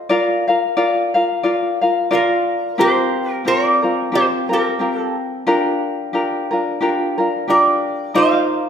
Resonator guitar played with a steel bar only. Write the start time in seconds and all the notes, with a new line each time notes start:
2.13 F4 A#4
2.80 G4 C5
3.32 A#4
3.48 A#4 D5
4.15 G4 C5
4.53 G4 A#4
4.96 A4
7.50 A#4 D5
8.15 C5 F5